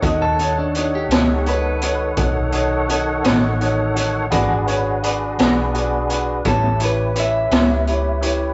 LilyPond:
<<
  \new Staff \with { instrumentName = "Clean electric guitar" } { \time 12/8 \key b \dorian \tempo 4. = 56 d''16 a'8 d'8 g'8. b'4 r2. | r2. a'8 b'8 e''2 | }
  \new Staff \with { instrumentName = "Grand piano" } { \time 12/8 \key b \dorian <dis' fis' a' dis''>8 <dis' fis' a' cis''>8 <dis' fis' a' cis''>8 <dis' fis' a' cis''>8 <dis' fis' a' cis''>8 <dis' fis' a' cis''>8 <dis' fis' a' cis''>8 <dis' fis' a' cis''>8 <dis' fis' a' cis''>8 <dis' fis' a' cis''>8 <dis' fis' a' cis''>8 <dis' fis' a' cis''>8 | <fis' gis' b' d''>8 <fis' gis' b' cis''>8 <fis' gis' b' d''>8 <fis' gis' b' d''>8 <fis' gis' b' d''>8 <fis' gis' b' d''>8 <e' g' b' cis''>8 <e' g' b' cis''>8 <e' g' b' cis''>8 <e' g' b' cis''>8 <e' g' b' cis''>8 <e' g' b' cis''>8 | }
  \new Staff \with { instrumentName = "Tonewheel organ" } { \time 12/8 \key b \dorian <dis a' cis'' fis''>1. | <d' fis' gis' b'>2. <cis' e' g' b'>2. | }
  \new Staff \with { instrumentName = "Clean electric guitar" } { \clef bass \time 12/8 \key b \dorian r4. <b, dis a cis'>8 r2 r8 <b, dis a cis'>8 r4 | <e gis d' fis'>8 r4 <e gis d' fis'>8 r4 <a, g b cis'>8 r4 <a, g b cis'>8 r4 | }
  \new Staff \with { instrumentName = "Fingered electric bass" } { \clef bass \time 12/8 \key b \dorian dis,4. cis,4. b,,4. a,,4. | gis,,4. b,,4. a,,4. cis,4. | }
  \new DrumStaff \with { instrumentName = "Drums" } \drummode { \time 12/8 <hh bd>8 hh8 hh8 <hh sn>8 hh8 hh8 <hh bd>8 hh8 hh8 <hh sn>8 hh8 hh8 | <hh bd>8 hh8 hh8 <hh sn>8 hh8 hh8 <hh bd>8 hh8 hh8 <hh sn>8 hh8 hh8 | }
>>